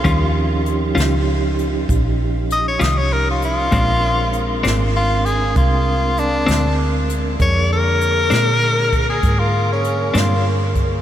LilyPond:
<<
  \new Staff \with { instrumentName = "Tenor saxophone" } { \time 12/8 \key bes \mixolydian \tempo 4. = 65 f'4 r2. ees''16 des''16 ees''16 des''16 bes'16 f'16 f'8~ | f'4. r8 f'8 aes'8 f'4 d'4 r4 | des''8 bes'2~ bes'16 aes'8 f'8 des'8. f'8 r4 | }
  \new Staff \with { instrumentName = "Tonewheel organ" } { \time 12/8 \key bes \mixolydian <f des' ees' g'>1. | <aes c' d' bes'>1. | <d bes aes' bes'>1. | }
  \new Staff \with { instrumentName = "Clean electric guitar" } { \time 12/8 \key bes \mixolydian <ees g des' f'>8 r4 <ees g des' f'>8 r2 r8 <ees g des' f'>8 r4 | <bes, aes c' d'>8 r4 <bes, aes c' d'>8 r2 r8 <bes, aes c' d'>8 r4 | r4. <bes, aes c' d'>8 r2 r8 <bes, aes c' d'>8 r4 | }
  \new Staff \with { instrumentName = "Fingered electric bass" } { \clef bass \time 12/8 \key bes \mixolydian ees,4. des,4. bes,,4. c,4. | bes,,4. aes,,4. c,4. d,4. | f,4. bes,4. aes,4. g,4. | }
  \new DrumStaff \with { instrumentName = "Drums" } \drummode { \time 12/8 <hh bd>4 hh8 <hh sn>4 hh8 <hh bd>4 hh8 <hh sn>4 hh8 | <hh bd>4 hh8 <hh sn>4 hh8 <hh bd>4 hh8 <hh sn>4 hh8 | <hh bd>4 hh8 <hh sn>4 <hh bd>8 <hh bd>4 hh8 <hh sn>4 <hh bd>8 | }
>>